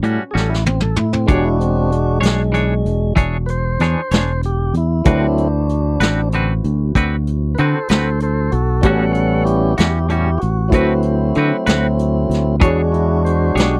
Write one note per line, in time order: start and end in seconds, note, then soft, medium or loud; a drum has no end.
0.00 0.17 A2 medium
0.00 0.22 A2 medium
0.00 0.22 G3 medium
0.00 1.25 C#4 soft
0.00 1.26 F#4 soft
0.00 1.27 G4 soft
0.00 1.27 B4 soft
0.00 closed hi-hat medium
0.04 0.22 C#4 medium
0.04 0.23 F#4 medium
0.31 0.94 A1 medium
0.31 0.53 F#4 soft
0.31 0.35 G#4 medium
0.35 0.54 G3 soft
0.35 0.53 C#4 soft
0.35 0.50 A4 medium
0.35 snare soft
0.49 0.64 E4 medium
0.54 snare soft
0.66 0.81 C4 medium
0.66 high tom medium
0.80 0.96 A4 medium
0.80 mid tom medium
0.96 1.26 A2 medium
0.96 1.13 E4 medium
0.96 mid tom medium
1.13 1.28 C4 medium
1.13 floor tom medium
1.26 2.19 E1 medium
1.26 1.47 E3 medium
1.26 1.90 G#3 soft
1.26 5.02 D4 soft
1.26 1.47 D4 medium
1.26 2.19 D4 soft
1.26 2.19 F#4 soft
1.26 1.44 G4 medium
1.26 1.48 G#4 medium
1.26 1.48 C#5 medium
1.26 kick loud
1.26 closed hi-hat medium
1.30 5.03 F#4 soft
1.30 5.04 G#4 soft
1.30 5.04 C#5 soft
1.44 1.59 E4 medium
1.60 1.91 C4 medium
1.60 closed hi-hat medium
1.91 3.13 G#3 medium
1.91 closed hi-hat medium
2.21 2.82 B1 medium
2.21 2.42 D4 soft
2.21 2.41 G#4 soft
2.21 2.41 C#5 soft
2.21 closed hi-hat medium
2.25 snare medium
2.52 2.72 E3 medium
2.52 2.73 D4 medium
2.52 2.73 G#4 medium
2.52 2.74 C#5 medium
2.52 closed hi-hat medium
2.85 3.15 E1 medium
2.85 closed hi-hat soft
3.16 3.76 E1 medium
3.16 3.36 E3 medium
3.16 3.36 D4 medium
3.16 3.36 G#4 medium
3.16 3.37 C#5 medium
3.16 kick medium
3.16 closed hi-hat medium
3.46 3.50 B4 medium
3.46 4.41 C5 medium
3.46 closed hi-hat medium
3.79 3.94 E2 medium
3.79 4.00 E3 medium
3.79 4.00 D4 soft
3.79 4.00 G#4 medium
3.79 4.01 C#5 medium
3.79 snare soft
3.79 closed hi-hat medium
4.11 4.71 E1 medium
4.11 4.32 D4 soft
4.11 4.31 G#4 soft
4.11 4.31 C#5 soft
4.11 snare medium
4.11 closed hi-hat medium
4.43 4.75 G4 medium
4.43 closed hi-hat medium
4.74 5.03 E2 medium
4.74 5.05 E4 medium
4.74 closed hi-hat soft
5.05 5.96 D2 loud
5.05 5.25 D3 medium
5.05 5.47 F#3 soft
5.05 5.48 A3 soft
5.05 5.48 C4 soft
5.05 5.25 C4 medium
5.05 6.29 D4 medium
5.05 8.79 E4 soft
5.05 5.48 E4 medium
5.05 8.80 F#4 soft
5.05 5.26 F#4 medium
5.05 5.26 B4 medium
5.05 8.81 B4 soft
5.05 kick loud
5.05 closed hi-hat medium
5.09 8.82 C5 soft
5.38 closed hi-hat soft
5.69 closed hi-hat medium
6.00 6.60 A1 medium
6.00 6.21 C4 soft
6.00 6.20 F#4 soft
6.00 6.20 B4 soft
6.00 snare medium
6.00 closed hi-hat medium
6.32 6.52 D3 medium
6.32 6.52 C4 medium
6.32 6.52 F#4 medium
6.32 6.53 B4 medium
6.32 closed hi-hat medium
6.64 6.93 D2 medium
6.64 closed hi-hat medium
6.95 7.54 D2 medium
6.95 7.15 D3 medium
6.95 7.14 C4 medium
6.95 7.15 F#4 medium
6.95 7.15 B4 medium
6.95 kick medium
6.95 closed hi-hat medium
7.27 closed hi-hat medium
7.55 7.58 B4 medium
7.55 closed hi-hat medium
7.59 7.77 D3 medium
7.59 7.73 D3 medium
7.59 7.78 C4 medium
7.59 7.78 F#4 medium
7.59 7.88 A4 medium
7.59 7.78 B4 medium
7.59 7.89 C5 medium
7.88 8.49 D2 medium
7.88 8.10 C4 soft
7.88 8.09 F#4 soft
7.88 8.19 A4 medium
7.88 8.09 B4 soft
7.88 8.21 C5 medium
7.88 snare medium
7.88 closed hi-hat medium
8.20 8.51 A4 medium
8.20 8.53 C5 medium
8.20 closed hi-hat medium
8.52 8.82 B1 medium
8.52 8.82 F#4 medium
8.52 8.83 A4 medium
8.52 closed hi-hat medium
8.81 9.74 A1 loud
8.81 9.03 A2 medium
8.81 9.73 G3 soft
8.81 9.74 B3 soft
8.81 9.74 C#4 soft
8.81 10.68 F#4 soft
8.81 10.69 G4 soft
8.81 9.12 A4 medium
8.81 10.69 B4 soft
8.81 9.12 F#5 medium
8.81 kick loud
8.81 closed hi-hat medium
8.86 9.04 G3 medium
8.86 9.04 C#4 medium
8.86 9.04 F#4 medium
8.86 10.70 C#5 medium
9.13 9.45 A4 medium
9.13 9.44 F#5 medium
9.13 closed hi-hat medium
9.45 9.75 E4 medium
9.45 9.77 G4 medium
9.45 closed hi-hat medium
9.77 10.38 E2 medium
9.77 9.98 G3 soft
9.77 9.98 C#4 soft
9.77 10.07 E4 medium
9.77 9.97 F#4 soft
9.77 10.09 G4 medium
9.77 snare loud
9.77 closed hi-hat medium
10.09 10.28 A2 medium
10.09 10.29 G3 medium
10.09 10.29 C#4 medium
10.09 10.40 E4 medium
10.09 10.30 F#4 medium
10.09 10.41 G4 medium
10.09 closed hi-hat medium
10.38 11.01 F#4 medium
10.38 closed hi-hat soft
10.43 10.71 A1 medium
10.68 11.31 D2 medium
10.68 12.55 F#3 soft
10.68 12.56 A3 soft
10.68 12.56 C4 soft
10.68 12.56 E4 medium
10.68 12.57 E4 soft
10.68 12.57 F#4 soft
10.68 kick medium
10.68 closed hi-hat medium
10.73 10.92 D3 medium
10.73 10.93 C4 medium
10.73 10.93 F#4 medium
10.73 12.58 B4 soft
10.73 10.93 B4 medium
10.73 12.59 C5 medium
11.02 closed hi-hat medium
11.35 11.55 D3 medium
11.35 11.51 D3 medium
11.35 11.56 C4 medium
11.35 11.56 F#4 medium
11.35 closed hi-hat medium
11.39 11.56 B4 medium
11.66 12.26 D2 medium
11.66 11.87 C4 soft
11.66 11.86 F#4 medium
11.66 11.86 B4 medium
11.66 snare loud
11.66 closed hi-hat medium
11.99 closed hi-hat medium
12.29 12.59 D2 medium
12.29 snare soft
12.29 closed hi-hat medium
12.60 13.52 E2 loud
12.60 12.80 E3 medium
12.60 13.80 G#3 soft
12.60 13.80 D4 medium
12.60 12.81 D4 medium
12.60 13.80 D4 soft
12.60 13.80 F#4 medium
12.60 12.80 G#4 medium
12.60 13.80 G#4 medium
12.60 12.81 C#5 medium
12.60 13.80 C#5 medium
12.60 kick loud
12.60 closed hi-hat medium
12.92 13.23 E4 medium
12.92 closed hi-hat soft
13.25 13.55 C5 medium
13.25 closed hi-hat medium
13.55 13.80 B1 medium
13.55 13.76 D4 soft
13.55 13.80 G4 medium
13.55 13.75 G#4 soft
13.55 13.75 C#5 soft
13.55 closed hi-hat medium
13.60 snare loud